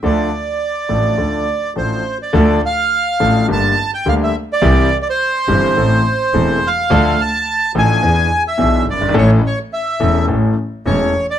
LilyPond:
<<
  \new Staff \with { instrumentName = "Bandoneon" } { \time 4/4 \key d \minor \tempo 4 = 106 d''2. c''8. d''16~ | d''8 f''4. a''8. g''16 f''16 e''8 d''16~ | d''8~ d''32 d''32 c''2~ c''8. f''8~ | f''8 a''4 gis''4~ gis''16 e''8. d''8 |
cis''8 cis''8 e''4 r4 cis''8. d''16 | }
  \new Staff \with { instrumentName = "Grand piano" } { \clef bass \time 4/4 \key d \minor <d, d f a d' a'>8 r4 <a,, a, f a d' a'>8 <d, d f a d' a'>8 r8 <a,, a, f a d' a'>8 r8 | <d, d f a d' a'>8 r4 <a,, a, f a d' a'>8 <g,, g, d g bes g'>8 r8 <d, d g bes g'>8 r8 | <c, c e g c' g'>8 r4 <g,, g, e g c' g'>8 <a,, a, e a c' a'>8 r8 <e,, e, e a c' a'>8 r8 | <d, d f a d' a'>8 r4 <a,, a, f a d' a'>8 <e, e b d' gis'>8 r8 <b,, b, e b d' gis'>8 r32 fis,,32 g,,32 gis,,32 |
<a,, a, e a cis' a'>8 r4 <e,, e, e a cis' a'>8 <a,, a, e a cis' a'>8 r8 <e,, e, e a cis' a'>8 r8 | }
  \new Staff \with { instrumentName = "Double bass" } { \clef bass \time 4/4 \key d \minor d,8 r4 a,,8 d,8 r8 a,,8 r8 | d,8 r4 a,,8 g,,8 r8 d,8 r8 | c,8 r4 g,,8 a,,8 r8 e,,8 r8 | d,8 r4 a,,8 e,8 r8 b,,8 g,,8 |
a,,8 r4 e,,8 a,,8 r8 e,,8 r8 | }
>>